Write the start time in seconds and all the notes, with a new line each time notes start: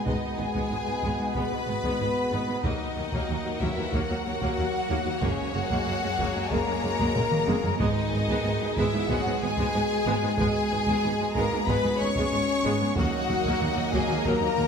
Already playing: B2 G#3 B3 G#4 B4
0.06 G#1 G#2 D#3 G#3 B3 D#4 D#5, taiko
0.37 G#1 G#2 G#3 B3 G#4 G#5
0.54 G#2 G#3 B3, taiko
0.70 G#1 G#2 G#3 B3
0.87 G#2 G#3 B3
1.02 G#1 G#2 G#3 B3, taiko
1.18 G#2 G#3 B3
1.33 G#1 G#2 G#3 B3 B4 B5, taiko
1.51 G#2 G#3 B3
1.67 G#1 G#2 G#3 B3
1.83 G#2 G#3 B3, taiko
2.00 G#1 G#2 G#3 B3
2.32 G#1 G#2 G#3 B3
2.48 G#2 G#3 B3
2.64 D#2 D#3 F#3 A#3 D#4 F#4 A#4 D#5 F#5, taiko
2.96 D#2 F#3 A#3
3.12 D#2 F#3 A#3, taiko
3.28 D#2 F#3 A#3
3.44 D#2 F#3 A#3
3.60 D#2 E3 F#3 A#3 E4 E5, taiko
3.76 D#2 F#3 A#3
3.91 D#2 F#3 A#3 F#4 F#5, taiko
4.09 D#2 F#3 A#3
4.24 D#2 F#3 A#3 F#4 F#5
4.41 D#2 F#3 A#3, taiko
4.57 D#2 F#3 A#3
4.89 D#2 F#3 A#3
5.05 D#2 F#3 A#3
5.21 F#1 F#2 C#3 G#3 A#3 C#4 G#4 C#5, taiko
5.53 F#1 F#2 F#3 G#3 A#3 F#4 F#5
5.69 F#2 G#3 A#3, taiko
5.85 F#1 F#2 G#3 A#3
6.02 F#2 G#3 A#3
6.18 F#1 F#2 G#3 A#3, taiko
6.35 F#2 G#3 A#3
6.51 F#1 F#2 G#3 A#3 A#4 A#5, taiko
6.66 F#2 G#3 A#3
6.82 F#1 F#2 G#3 A#3
6.99 F#2 G#3 A#3, taiko
7.15 F#1 F#2 G#3 A#3, taiko low-mid
7.32 taiko mid
7.47 F#1 F#2 G#3 A#3, taiko high
7.64 F#2 G#3 A#3, taiko low
7.79 G#1 G#2 B2 D#3 G#3 B3 D#4 G#4 D#5, taiko
8.12 G#1 G#2 G#3 B3
8.28 G#2 G#3 B3, taiko
8.44 G#1 G#2 G#3 B3
8.60 G#2 G#3 B3
8.75 G#1 G#2 E3 G#3 B3 E4 E5, taiko
8.92 G#2 G#3 B3
9.08 G#1 G#2 F#3 G#3 B3 F#4 F#5, taiko
9.25 G#2 G#3 B3
9.41 G#1 G#2 G#3 B3 G#4 G#5
9.57 G#2 G#3 B3, taiko
9.74 G#1 G#2 G#3 B3
10.06 G#1 G#2 G#3 B3
10.22 G#2 G#3 B3
10.37 G#1 G#2 G#3 B3 G#4 G#5, taiko
10.70 G#1 G#2 G#3 B3
10.86 G#2 G#3 B3, taiko
11.03 G#1 G#2 G#3 B3
11.19 G#2 G#3 B3
11.33 G#1 G#2 G#3 A#3 B3 A#4 A#5, taiko
11.51 G#2 G#3 B3
11.66 G#1 G#2 G#3 B3 B4 B5, taiko
11.83 G#2 G#3 B3
11.98 G#1 G#2 G#3 B3 C#4 C#5 C#6
12.15 G#2 G#3 B3, taiko
12.32 G#1 G#2 G#3 B3
12.64 G#1 G#2 G#3 B3
12.80 G#2 G#3 B3
12.95 D#2 F#3 A#3 D#4 F#4 D#5 F#5, taiko
13.28 D#2 F#3 A#3, taiko mid
13.44 D#2 F#3 A#3, taiko
13.60 D#2 F#3 A#3, taiko mid
13.76 D#2 F#3 A#3, taiko mid
13.92 D#2 F#3 G#3 A#3 G#4 G#5, taiko
14.08 D#2 F#3 A#3, taiko mid
14.24 D#2 F#3 A#3 A#4 A#5, taiko
14.41 D#2 F#3 A#3
14.57 D#2 F#3 A#3, taiko mid